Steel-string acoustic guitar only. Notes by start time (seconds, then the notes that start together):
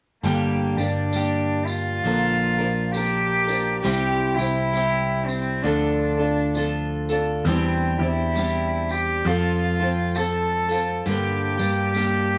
0.23 G2 D3 G3 A#3 D4 G4
0.78 G3 A#3 D4 G4
1.12 G3 A#3 D4 G4
2.04 A#2 D3 F3 A#3 D4 A#4
2.58 F3 A#3 D4 A#4
2.93 F3 A#3 D4 A#4
3.47 F3 A#3 D4 A#4
3.83 C3 G3 C4 E4 G4
4.37 C4 E4 G4
4.72 G3 C4 E4 G4
5.63 D3 F3 D4 F4 A4
6.18 D4 F4 A4
6.54 F3 D4 F4 A4
7.09 D4 F4 A4
7.45 E3 G3 C4 D4 G4
7.99 C4 D4 G4
8.35 G3 C4 D4 G4
9.25 F3 C4 F4 A4
9.79 C4 F4 A4
10.15 F3 C4 F4 A4
10.68 C4 F4 A4
11.06 G2 D3 G3 A#3 D4 G4
11.58 G3 A#3 D4 G4
11.94 G3 A#3 D4 G4